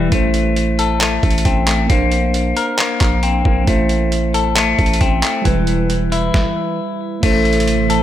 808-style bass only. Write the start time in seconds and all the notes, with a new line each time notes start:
0.12 A1
1.23 A1
1.45 A1
1.90 A#1
3.01 A#1
3.45 A#1
3.67 A1
4.79 A1
5.01 A1
5.45 E1
7.23 A1